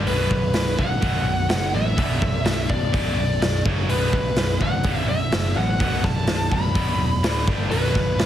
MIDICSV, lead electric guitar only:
0, 0, Header, 1, 2, 480
1, 0, Start_track
1, 0, Key_signature, 2, "minor"
1, 0, Tempo, 478088
1, 74, Time_signature, 4, 2, 24, 8
1, 8292, End_track
2, 0, Start_track
2, 0, Title_t, "Lead electric guitar"
2, 0, Program_c, 0, 29
2, 75, Note_on_c, 0, 71, 93
2, 789, Note_on_c, 0, 78, 98
2, 815, Note_off_c, 0, 71, 0
2, 1748, Note_off_c, 0, 78, 0
2, 1752, Note_on_c, 0, 76, 88
2, 2707, Note_on_c, 0, 74, 80
2, 2739, Note_off_c, 0, 76, 0
2, 3628, Note_off_c, 0, 74, 0
2, 3914, Note_on_c, 0, 71, 77
2, 4591, Note_off_c, 0, 71, 0
2, 4640, Note_on_c, 0, 78, 94
2, 5081, Note_off_c, 0, 78, 0
2, 5114, Note_on_c, 0, 76, 86
2, 5558, Note_off_c, 0, 76, 0
2, 5595, Note_on_c, 0, 78, 76
2, 5816, Note_off_c, 0, 78, 0
2, 5832, Note_on_c, 0, 78, 100
2, 6054, Note_off_c, 0, 78, 0
2, 6065, Note_on_c, 0, 81, 103
2, 6513, Note_off_c, 0, 81, 0
2, 6559, Note_on_c, 0, 83, 89
2, 7475, Note_off_c, 0, 83, 0
2, 7738, Note_on_c, 0, 71, 94
2, 8292, Note_off_c, 0, 71, 0
2, 8292, End_track
0, 0, End_of_file